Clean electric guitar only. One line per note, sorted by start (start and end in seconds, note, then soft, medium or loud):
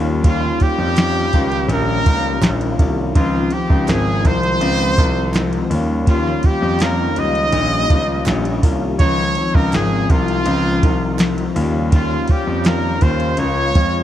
0.00 0.22 G3 medium
0.00 0.22 C#4 medium
0.00 0.23 F4 medium
0.22 0.60 D#3 medium
0.22 0.60 G3 medium
0.22 0.59 C#4 medium
0.22 0.58 F4 medium
0.59 0.95 G3 medium
0.59 0.97 C#4 medium
0.59 0.96 F4 medium
0.96 1.33 D#3 medium
0.96 1.33 G3 medium
0.96 1.34 C#4 medium
0.96 1.32 F4 medium
1.33 1.68 G3 soft
1.33 1.70 C#4 medium
1.33 1.70 F4 medium
1.68 2.06 D#3 medium
1.68 2.06 G3 medium
1.68 2.06 C#4 medium
1.68 2.04 F4 medium
2.05 2.42 G3 soft
2.05 2.43 C#4 soft
2.05 2.42 F4 medium
2.42 2.79 D#3 medium
2.42 2.79 G3 medium
2.42 2.79 C#4 medium
2.42 2.77 F4 medium
2.78 3.15 G3 medium
2.78 3.16 C#4 medium
2.78 3.15 F4 medium
3.15 3.52 C#3 medium
3.15 3.52 F3 medium
3.15 3.52 C4 medium
3.15 3.51 D#4 medium
3.53 3.88 F3 medium
3.53 3.88 C4 medium
3.53 3.88 D#4 medium
3.88 4.25 C#3 medium
3.88 4.25 F3 medium
3.88 4.24 C4 medium
3.88 4.23 D#4 medium
4.24 4.61 F3 medium
4.24 4.62 C4 soft
4.24 4.61 D#4 medium
4.62 4.98 C#3 medium
4.62 4.98 F3 medium
4.62 4.99 C4 medium
4.62 4.97 D#4 medium
4.98 5.33 F3 soft
4.98 5.34 C4 medium
4.98 5.34 D#4 medium
5.35 5.71 F3 medium
5.35 5.71 C4 medium
5.35 5.70 D#4 loud
5.70 6.07 G3 soft
5.70 6.07 C#4 medium
5.70 6.07 F4 medium
6.06 6.43 D#3 medium
6.06 6.44 G3 medium
6.06 6.44 C#4 medium
6.06 6.43 F4 medium
6.44 6.81 G3 medium
6.44 6.81 C#4 medium
6.44 6.81 F4 medium
6.81 7.17 D#3 medium
6.81 7.18 G3 medium
6.81 7.17 C#4 medium
6.81 7.16 F4 medium
7.17 7.53 G3 soft
7.17 7.54 C#4 medium
7.17 7.54 F4 medium
7.53 7.90 D#3 medium
7.53 7.90 G3 medium
7.53 7.91 C#4 medium
7.53 7.89 F4 medium
7.90 8.25 G3 soft
7.90 8.26 C#4 medium
7.90 8.27 F4 medium
8.27 8.63 D#3 medium
8.27 8.63 G3 loud
8.27 8.63 C#4 medium
8.27 8.61 F4 loud
8.62 9.00 G3 medium
8.62 9.00 C#4 medium
8.62 8.99 F4 medium
9.00 9.36 C#3 medium
9.00 9.37 F3 medium
9.00 9.34 D#4 medium
9.35 9.72 F3 medium
9.35 9.73 C4 medium
9.35 9.72 D#4 medium
9.73 10.09 C#3 medium
9.73 10.10 F3 medium
9.73 10.10 C4 medium
9.73 10.09 D#4 medium
10.10 10.45 F3 medium
10.10 10.46 C4 soft
10.10 10.46 D#4 medium
10.46 10.82 C#3 medium
10.46 10.83 F3 medium
10.46 10.82 C4 medium
10.46 10.81 D#4 medium
10.82 11.19 F3 soft
10.82 11.19 C4 medium
10.82 11.19 D#4 medium
11.20 11.56 F3 medium
11.20 11.56 C4 loud
11.20 11.54 D#4 loud
11.55 11.91 G3 medium
11.55 11.91 C#4 medium
11.55 11.92 F4 medium
11.91 12.28 D#3 medium
11.91 12.29 G3 medium
11.91 12.28 C#4 medium
11.91 12.27 F4 medium
12.28 12.64 G3 medium
12.28 12.66 C#4 medium
12.28 12.65 F4 medium
12.65 13.02 D#3 medium
12.65 13.02 G3 medium
12.65 13.02 C#4 medium
12.65 13.00 F4 medium
13.01 13.38 G3 soft
13.01 13.39 C#4 medium
13.01 13.38 F4 medium
13.37 13.74 C#3 medium
13.37 13.75 G#3 medium
13.37 13.74 F4 medium
13.75 14.03 G#3 medium
13.75 14.03 F4 medium